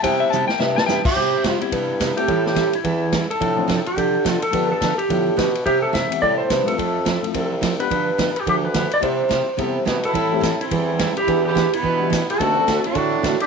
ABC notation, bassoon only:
X:1
M:4/4
L:1/8
Q:"Swing" 1/4=214
K:C
V:1 name="Bassoon" clef=bass
C,4 G,,4 | C,4 G,,4 | A,,4 E,,4 | A,,4 D,4 |
G,,4 A,,2 B,,2 | C,4 A,,2 G,,2 | F,,4 C,,4 | G,,4 D,,4 |
C,4 C,2 B,,2 | A,,4 E,,4 | E,,4 B,,4 | D,,4 A,,4 |]